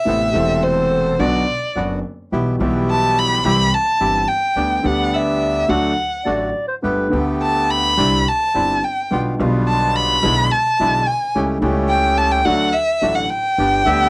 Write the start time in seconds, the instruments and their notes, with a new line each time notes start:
Already playing: violin E5
0.05 grand piano A1 A2 C3 A3 B3 E4, upright bass A1, bandoneon B3 C4 A4
0.32 grand piano E1 E2 C3 A3 C4 E4, upright bass E1, bandoneon C4 A4
0.63 violin C5
1.19 grand piano B1 B2 D3 F#3 B3 F#4, upright bass B1, bandoneon B3 D4 F#4, violin D5
1.75 upright bass F#1, grand piano F#1 F#2 D3 F#3 B3 F#4, bandoneon B3 D4 F#4
2.32 grand piano B1 B2 E3 G3 B3 G4, upright bass B1, bandoneon B3 E4 G4
2.59 upright bass B1, grand piano B1 B2 E3 G3 B3, bandoneon B3 E4 G4
2.63 grand piano G4
2.90 violin A5
3.19 violin B5
3.44 grand piano C2 C3 E3 G3 C4 G4, upright bass C2, bandoneon C4 E4 G4, violin B5
3.74 violin A5
4.00 grand piano G1 G2 E3 G3 C4 G4, upright bass G1, bandoneon C4 E4 G4
4.28 violin G5
4.56 upright bass D2, grand piano D2 D3 G3 B3 G4, bandoneon B3 D4 G4
4.78 violin G5
4.82 grand piano D2 D3 G3 B3 G4, upright bass D2, bandoneon B3 D4 G4, violin F#5
5.14 violin E5
5.68 grand piano D2 D3 F#3 A3 F#4, upright bass D2, bandoneon A3 D4 F#4, violin F#5
6.25 grand piano A1 A2 D3 F#3 A3 F#4, upright bass A1, bandoneon A3 D4 F#4, clarinet D5
6.68 clarinet C5
6.82 grand piano G1 G2 D3 A3 B3 G4, upright bass G1, bandoneon A3 B3 G4, clarinet B4
7.09 grand piano D2 D3 A3 B3, bandoneon A3 B3 G4
7.13 upright bass D2, grand piano G4
7.43 violin A5
7.71 violin B5
7.97 grand piano C2 C3 D3 G3 C4 E4, upright bass C2, bandoneon C4 D4 E4
8.28 violin A5
8.54 grand piano G1 G2 D3 G3 C4 E4, upright bass G1, bandoneon C4 D4 E4
8.84 violin G5
9.10 grand piano B1 B2 D3 G3 B3 F4, upright bass B1, bandoneon G3 B3 F4
9.38 grand piano B1 B2 D3 G3 B3 F4, upright bass B1, bandoneon G3 B3 F4
9.68 violin A5
9.96 violin B5
10.23 grand piano B1 B2 D3 G#3 B3 E4, upright bass B1, bandoneon G#3 D4 E4
10.51 violin A5
10.79 grand piano B1 B2 D3 G#3 B3 E4, upright bass B1, bandoneon G#3 D4 E4
11.07 violin G#5
11.35 upright bass C#2, grand piano C#2 C#3 G3 A3 E4, bandoneon A3 C#4 G4
11.60 upright bass C#2, grand piano C#2 C#3 G3 A3, bandoneon A3 C#4 G4
11.64 grand piano E4
11.90 violin G5
12.18 violin A5
12.31 violin G5
12.45 grand piano D2 D3 F#3 A3 F#4, upright bass D2, bandoneon A3 D4 F#4, violin F#5
12.73 violin E5
13.01 grand piano A1 A2 D3 F#3 A3 F#4, upright bass A1, bandoneon A3 D4 F#4
13.15 violin F#5
13.30 violin G5
13.58 grand piano G1 G2 D3 G3 B3 G4, upright bass G1, bandoneon B3 D4 G4
13.84 grand piano D2 D3 G3 B3 G4, upright bass D2, bandoneon B3 D4 G4, clarinet E5